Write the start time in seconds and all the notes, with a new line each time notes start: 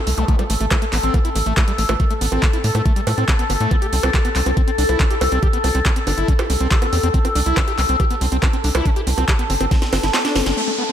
Already playing: A4
0.07 C2 A3, open hi-hat
0.18 C2 A3, closed hi-hat, zap
0.28 A3, kick, closed hi-hat
0.39 G3, closed hi-hat, high bongo
0.50 A1 A3, open hi-hat
0.60 A1 A3, closed hi-hat
0.71 A3, kick, clap, closed hi-hat, high bongo
0.82 A3, closed hi-hat
0.93 A1 B3, clap, open hi-hat
1.03 A1 C4, closed hi-hat
1.14 A3, kick, closed hi-hat, high bongo
1.25 E4, closed hi-hat
1.36 A1 A3, open hi-hat
1.46 A1 A3, closed hi-hat
1.57 A3, kick, clap, closed hi-hat, high bongo
1.68 G3, closed hi-hat
1.78 A1 A3, open hi-hat
1.89 A1 A3, closed hi-hat, high bongo
2.00 A3, kick, closed hi-hat
2.11 A3, closed hi-hat
2.21 A1 B3, open hi-hat
2.32 A1 C4, closed hi-hat, high bongo
2.43 A3, kick, clap, closed hi-hat
2.53 E4, closed hi-hat
2.64 A2 A3, open hi-hat
2.75 A2 A3, closed hi-hat, high bongo
2.86 A3, kick, closed hi-hat
2.96 G3, closed hi-hat
3.07 A2 A3, open hi-hat, high bongo
3.18 A2 C4, closed hi-hat
3.28 B3, kick, clap, closed hi-hat
3.39 B3, closed hi-hat
3.50 G1 B3, open hi-hat, high bongo
3.61 A2 A3, closed hi-hat
3.71 C4, kick, closed hi-hat, high bongo
3.82 G4, closed hi-hat
3.93 C2 C4, open hi-hat
4.03 C2 C4, closed hi-hat, high bongo
4.14 G4, kick, clap, closed hi-hat
4.25 B3, closed hi-hat
4.36 C2 C4, clap, open hi-hat
4.46 C2 C4, closed hi-hat, high bongo
4.57 C4, kick, closed hi-hat
4.68 C4, closed hi-hat
4.78 C2 D4, open hi-hat
4.89 C2 E4, closed hi-hat, high bongo
5.00 C4, kick, clap, closed hi-hat
5.11 G4, closed hi-hat
5.21 C2 C4, open hi-hat, high bongo
5.32 C2 C4, closed hi-hat
5.43 G4, kick, closed hi-hat
5.53 B3, closed hi-hat
5.64 C2 C4, open hi-hat, high bongo
5.75 C2 C4, closed hi-hat
5.86 C4, kick, clap, closed hi-hat
5.96 C4, closed hi-hat
6.07 G1 D4, open hi-hat, high bongo
6.18 G1 E4, closed hi-hat
6.28 C4, kick, closed hi-hat
6.39 G4, closed hi-hat, high bongo
6.50 C2 C4, open hi-hat
6.61 C2 C4, closed hi-hat
6.71 G4, kick, clap, closed hi-hat
6.82 B3, closed hi-hat, high bongo
6.93 E2 C4, open hi-hat
7.03 E2 C4, closed hi-hat
7.14 C4, kick, closed hi-hat
7.25 C4, closed hi-hat, high bongo
7.36 C2 D4, open hi-hat
7.46 C2 E4, closed hi-hat
7.57 C4, kick, clap, closed hi-hat, high bongo
7.68 G4, closed hi-hat
7.78 C2 C4, clap, open hi-hat
7.89 C2 C4, closed hi-hat
8.00 G4, kick, closed hi-hat, high bongo
8.11 B3, closed hi-hat
8.21 C2 C4, open hi-hat
8.32 C2 C4, closed hi-hat
8.43 C4, kick, clap, closed hi-hat, high bongo
8.53 C4, closed hi-hat
8.64 C2 D4, open hi-hat
8.75 C2 E4, closed hi-hat, high bongo
8.86 C4, kick, closed hi-hat
8.96 G4, closed hi-hat
9.07 C2 C4, open hi-hat
9.18 C2 C4, closed hi-hat, high bongo
9.28 G4, kick, clap, closed hi-hat
9.39 B3, closed hi-hat
9.50 G1 C4, open hi-hat
9.61 G1 C4, closed hi-hat, high bongo
9.71 C4, kick, snare, closed hi-hat
9.82 C4, snare, closed hi-hat
9.93 G1 C4, snare, open hi-hat, high bongo
10.03 G1 E4, snare, closed hi-hat
10.14 C4, snare, clap, closed hi-hat
10.25 D4, snare, closed hi-hat
10.36 G1 C4, snare, open hi-hat, high bongo
10.46 G1 D4, snare, closed hi-hat
10.57 A3 A4, downlifter
10.68 A3
10.78 B3